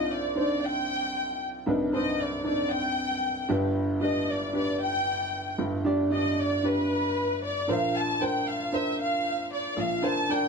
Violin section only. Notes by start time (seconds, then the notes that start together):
Already playing: D#5
0.13 D5
0.38 D5
0.65 G5
1.95 D#5
2.20 D5
2.46 D5
2.72 G5
4.03 D#5
4.30 D5
4.56 D5
4.83 G5
6.14 D#5
6.40 D5
6.66 B4
7.44 D5
7.71 F5
7.97 A5
8.22 G5
8.48 F5
8.74 E5
9.01 F5
9.53 D5
9.80 F5
10.05 A5
10.31 G5